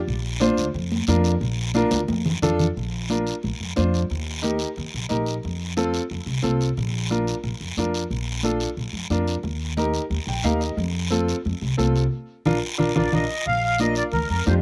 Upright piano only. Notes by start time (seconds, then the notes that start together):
0.40 D4 F4 C5
1.08 D4 F4 A#4
1.74 D4 F4 A#4
2.42 D4 F4 A4
3.10 D4 F4 A#4
3.76 D4 F4 C5
4.42 D#4 G4 A#4
5.09 D#4 G4 A#4
5.77 C4 F4 A4
6.42 C4 F4 A4
7.10 D4 F4 A#4
7.78 D4 F4 A#4
8.44 D4 F4 A4
9.10 D4 F4 A#4
9.77 D#4 G4 A#4
10.28 G5
10.44 D#4 G4 A#4 F5
10.60 D#5
11.10 C4 F4 A4
11.77 C4 F4 A4
12.46 D4 F4 A#4
12.78 D4 F4 A#4
12.95 D4 F4 A#4
13.12 D4 F4 A#4
13.80 D4 F4 A#4
14.46 D4 F4 G4